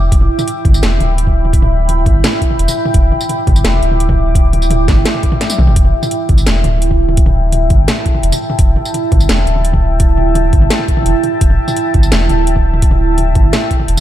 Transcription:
Already playing: E1 E4 E5 G5 D6
0.12 E1, kick, closed hi-hat
0.21 mid tom
0.30 B5
0.39 mid tom, tambourine
0.48 closed hi-hat
0.65 G1, kick, closed hi-hat, mid tom
0.74 tambourine
0.83 E1, snare, closed hi-hat, mid tom
1.00 D1, closed hi-hat, mid tom
1.18 closed hi-hat
1.27 kick, mid tom
1.45 mid tom
1.53 kick, closed hi-hat
1.62 mid tom
1.89 closed hi-hat, mid tom
2.06 G1, kick, closed hi-hat, mid tom
2.24 snare, closed hi-hat, mid tom
2.42 kick, closed hi-hat
2.51 mid tom
2.59 E1, closed hi-hat
2.68 mid tom, tambourine
2.85 mid tom
2.94 E1, kick, closed hi-hat
3.12 D6, mid tom
3.21 tambourine
3.29 closed hi-hat, mid tom
3.47 G1, kick, closed hi-hat, mid tom
3.56 tambourine
3.65 E1, snare, closed hi-hat
3.74 mid tom
3.82 D1, closed hi-hat
3.92 mid tom
4.00 closed hi-hat
4.09 kick, mid tom
4.35 kick, closed hi-hat, mid tom
4.53 closed hi-hat, mid tom
4.62 tambourine
4.71 closed hi-hat, mid tom
4.88 G1, kick, snare, closed hi-hat
4.97 mid tom
5.06 snare, closed hi-hat
5.14 mid tom
5.23 kick, closed hi-hat
5.32 mid tom
5.41 snare, closed hi-hat
5.50 high tom, tambourine
5.58 B1, mid tom
5.67 F#1, mid tom
5.72 A5
5.76 E1, kick, closed hi-hat
5.85 mid tom
6.03 mid tom, tambourine
6.11 closed hi-hat
6.29 G1, kick, closed hi-hat, mid tom
6.38 tambourine
6.47 E1, snare, closed hi-hat, mid tom
6.64 D1, closed hi-hat, mid tom
6.82 closed hi-hat
6.91 kick, mid tom
7.09 mid tom
7.17 kick, closed hi-hat
7.26 mid tom
7.52 closed hi-hat, mid tom
7.70 G1, kick, closed hi-hat, mid tom
7.88 snare, closed hi-hat, mid tom
8.06 kick, closed hi-hat
8.15 mid tom
8.23 E1, closed hi-hat
8.32 mid tom, tambourine
8.50 mid tom
8.59 E1, kick, closed hi-hat
8.76 mid tom
8.85 tambourine
8.94 closed hi-hat, mid tom
9.12 G1, kick, closed hi-hat, mid tom
9.20 tambourine
9.29 E1, snare, closed hi-hat
9.38 mid tom
9.47 D1, closed hi-hat
9.56 mid tom
9.65 closed hi-hat
9.73 kick, mid tom
10.00 kick, closed hi-hat, mid tom
10.17 mid tom
10.35 closed hi-hat, mid tom
10.53 G1, kick, closed hi-hat
10.62 mid tom
10.70 snare, closed hi-hat
10.79 mid tom
10.88 kick, closed hi-hat
10.97 mid tom
11.03 E1, closed hi-hat, mid tom
11.09 mid tom
11.23 closed hi-hat, mid tom
11.41 E1, kick, closed hi-hat
11.50 mid tom
11.68 mid tom, tambourine
11.77 closed hi-hat
11.94 G1, kick, closed hi-hat, mid tom
12.03 tambourine
12.12 E1, snare, closed hi-hat, mid tom
12.29 D1, closed hi-hat, mid tom
12.47 closed hi-hat
12.56 kick, mid tom
12.74 mid tom
12.82 kick, closed hi-hat
12.91 mid tom
13.18 closed hi-hat, mid tom
13.35 G1, kick, closed hi-hat, mid tom
13.53 snare, closed hi-hat, mid tom
13.71 kick, closed hi-hat
13.80 mid tom
13.88 E1, closed hi-hat

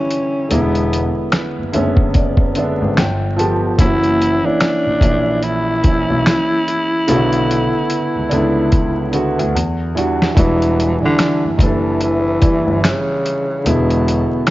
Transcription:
Already playing: D3 E3 G3 C#4 D4 E4 A4
0.11 closed hi-hat
0.49 E1 D3 G#3 B3, closed hi-hat
0.53 B3 E4
0.75 closed hi-hat
0.93 closed hi-hat
1.32 finger snap, snare, closed hi-hat
1.58 F#1
1.72 F#1 D3 G#3 B3 C#4 E5, closed hi-hat
1.97 kick
2.14 D5, kick, closed hi-hat
2.37 kick
2.55 D3 G#3 B3 D4 E5, closed hi-hat
2.81 G#1
2.97 G1 G5, finger snap, snare, closed hi-hat
3.36 F3 A3 B3 G4 A5, closed hi-hat
3.78 F#1 E3 A#3 C#4 E4 F#4, kick, closed hi-hat
4.04 closed hi-hat
4.22 closed hi-hat
4.42 E3 A#3 D4 E4 C#5
4.60 finger snap, snare, closed hi-hat
4.86 A#1
5.00 A#1 E3 A#3 E4 C#5, kick, closed hi-hat
5.43 E4, closed hi-hat
5.83 E3 A#3 C#4, kick, closed hi-hat
5.87 E4
6.10 B1
6.26 finger snap, snare, closed hi-hat
6.68 closed hi-hat
7.08 B1 C#3 A3 B3 F#4, closed hi-hat
7.14 D3
7.33 closed hi-hat
7.51 closed hi-hat
7.90 closed hi-hat
8.15 C#2
8.29 C#2 A3 B3 D4 E4, closed hi-hat
8.72 kick, closed hi-hat
9.11 D3 A3 B3 F#4, closed hi-hat
9.38 D2, closed hi-hat
9.55 E2, closed hi-hat
9.95 E3 G3 D4 F#4, closed hi-hat
10.22 snare
10.35 E1 E3 G3 D4 F#4, kick, closed hi-hat
10.62 closed hi-hat
10.80 closed hi-hat
11.00 E3 G3 D4 E4
11.05 D3
11.19 finger snap, snare, closed hi-hat
11.44 F#1
11.57 F#1 D#3 E3 G3, kick, closed hi-hat
11.62 E3 D4 A4
12.01 E3, closed hi-hat
12.40 E3 G3 E4 D5, kick, closed hi-hat
12.67 G1
12.84 C#3, finger snap, snare, closed hi-hat
13.26 closed hi-hat
13.64 E1 B2 D3 G#3 B3 E4, closed hi-hat
13.90 closed hi-hat
14.08 closed hi-hat
14.47 finger snap, closed hi-hat

